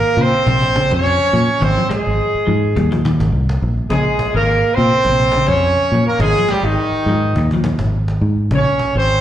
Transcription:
0.00 0.18 A#3 medium
0.00 0.18 A#4 loud
0.17 0.32 A#2 loud
0.17 0.41 C#3 medium
0.17 cajon slap soft
0.21 0.93 C4 loud
0.21 0.93 C5 loud
0.46 0.88 A#1 medium
0.46 0.69 C3 medium
0.46 cajon bass medium
0.46 cajon slap soft
0.62 cajon bass medium
0.76 0.99 C#3 medium
0.76 cajon bass medium
0.76 cajon slap medium
0.91 1.18 F2 medium
0.91 1.60 C#4 loud
0.91 1.60 C#5 loud
0.91 cajon bass medium
0.91 cajon slap medium
1.05 cajon slap soft
1.33 1.48 A#2 medium
1.33 1.56 F3 medium
1.33 cajon slap soft
1.49 cajon slap soft
1.61 1.76 G#1 loud
1.61 1.73 D#3 medium
1.61 1.91 C4 loud
1.61 1.91 C5 loud
1.61 cajon bass loud
1.78 1.88 F3 medium
1.89 2.13 G#3 medium
1.89 3.01 G#3 medium
1.89 3.01 G#4 medium
1.89 muted fingered electric bass stroke soft
1.89 cajon bass medium
1.89 cajon slap medium
2.06 2.19 G#1 medium
2.06 cajon slap soft
2.20 cajon slap soft
2.35 muted fingered electric bass stroke soft
2.35 cajon slap soft
2.47 2.75 G#2 medium
2.47 2.70 F3 medium
2.64 cajon slap soft
2.76 3.17 D#2 medium
2.76 2.89 G3 medium
2.76 cajon bass medium
2.76 cajon slap soft
2.92 3.03 F3 medium
2.92 cajon bass medium
3.05 3.28 D#3 medium
3.05 cajon bass medium
3.05 cajon slap medium
3.20 3.31 G#1 medium
3.20 cajon bass medium
3.20 cajon slap medium
3.32 3.59 C2 medium
3.32 cajon slap soft
3.49 cajon slap medium
3.62 3.89 A#1 medium
3.62 cajon slap soft
3.77 cajon slap soft
3.90 4.05 A#1 loud
3.90 4.14 C#3 medium
3.90 4.32 G#3 medium
3.90 4.32 G#4 loud
3.90 cajon bass loud
3.90 cajon slap soft
4.19 muted fingered electric bass stroke soft
4.19 cajon bass medium
4.19 cajon slap medium
4.34 4.62 G#1 medium
4.34 4.58 D#3 medium
4.34 4.75 A#3 medium
4.34 4.75 A#4 loud
4.48 cajon slap soft
4.63 cajon slap soft
4.74 4.92 A#2 medium
4.74 5.00 C3 medium
4.74 5.49 C4 loud
4.74 5.49 C5 loud
4.74 cajon slap soft
5.04 5.46 A#1 medium
5.04 cajon bass medium
5.04 cajon slap soft
5.08 5.30 C3 medium
5.20 cajon bass medium
5.32 cajon bass medium
5.32 cajon slap medium
5.36 5.58 C#3 medium
5.47 5.76 F2 medium
5.47 6.06 C#4 loud
5.47 6.06 C#5 loud
5.47 cajon bass medium
5.47 cajon slap medium
5.61 cajon slap soft
5.90 6.06 A#2 medium
5.90 cajon slap soft
5.94 6.16 F3 medium
6.06 6.19 A#3 medium
6.06 6.19 A#4 medium
6.06 cajon slap soft
6.19 6.34 G#1 loud
6.19 6.34 D#3 medium
6.19 6.49 G#3 loud
6.19 6.49 G#4 loud
6.19 cajon bass loud
6.19 cajon slap soft
6.39 6.48 F3 medium
6.48 6.65 G3 medium
6.48 6.73 G#3 medium
6.48 6.65 G4 loud
6.48 muted fingered electric bass stroke soft
6.48 cajon bass medium
6.48 cajon slap medium
6.63 6.77 G#1 medium
6.63 7.51 D#3 medium
6.63 7.51 D#4 medium
6.63 cajon slap soft
6.76 cajon slap soft
6.92 muted fingered electric bass stroke soft
6.92 cajon slap soft
7.06 7.33 G#2 medium
7.06 7.30 F3 medium
7.06 cajon slap soft
7.35 7.77 D#2 medium
7.35 muted clean electric guitar stroke medium
7.35 cajon bass medium
7.35 cajon slap soft
7.51 7.63 F3 medium
7.51 cajon bass medium
7.64 7.88 D#3 medium
7.64 cajon bass medium
7.64 cajon slap medium
7.79 8.19 G#1 medium
7.79 cajon bass medium
7.79 cajon slap medium
7.93 cajon slap soft
8.08 cajon slap medium
8.21 8.48 G#2 loud
8.21 cajon slap soft
8.38 cajon slap soft
8.51 8.65 A#1 loud
8.51 8.74 C#3 medium
8.51 cajon bass loud
8.55 8.94 C#4 medium
8.55 8.94 C#5 loud
8.79 muted fingered electric bass stroke soft
8.79 cajon bass medium
8.79 cajon slap medium
8.95 9.21 G#1 medium
8.95 9.21 C4 medium
8.95 9.21 C5 loud
8.95 muted clean electric guitar stroke medium
8.95 cajon slap soft
9.08 cajon slap soft

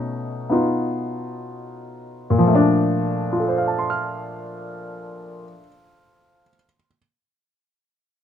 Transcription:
0.00 2.42 B2 soft
0.00 2.42 A3 soft
0.00 2.43 C#4 soft
0.00 0.50 D#4 medium
0.50 2.42 B3 soft
0.50 2.43 D#4 soft
0.50 2.43 F4 soft
2.30 5.42 A#2 medium
2.38 5.50 F3 medium
2.47 5.59 A3 medium
2.55 5.67 D4 medium
3.33 6.40 F4 soft
3.40 6.47 A4 soft
3.48 6.56 C5 soft
3.58 6.65 F5 soft
3.67 6.75 A5 soft
3.78 6.86 C6 soft
3.90 6.97 F6 soft

